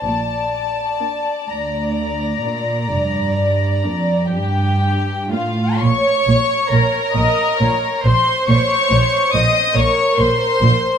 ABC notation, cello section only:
X:1
M:12/8
L:1/8
Q:3/8=43
K:Bb
V:1 name="Cello section" clef=bass
B,,3 D,,2 B,, G,,2 F,, G,,2 A,, | [K:Bbm] B,, B,, B,, B,, B,, B,, B,, B,, B,, B,, B,, B,, |]